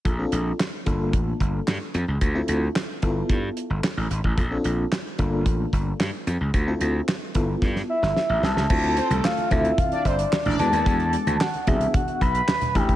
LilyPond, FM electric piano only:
\new Staff \with { instrumentName = "FM electric piano" } { \time 4/4 \key d \minor \tempo 4 = 111 <f' a'>16 <c' d' f' a'>8 r8. <bes d' f' a'>4. r4 | <f' a'>16 <c' e' f' a'>8 r8. <b e' f' a'>4. r4 | <f' a'>16 <c' d' f' a'>8 r8. <bes d' f' a'>4. r4 | <f' a'>16 <c' e' f' a'>8 r8. <b e' f' a'>4. r4 |
<c' e' f' a'>8. r8. <c' e' f' a'>4 r4 <gis b d' fis'>8~ | <gis b d' fis'>4 r8 <b d' fis' gis'>4 r4 <a d' e' g'>8 | }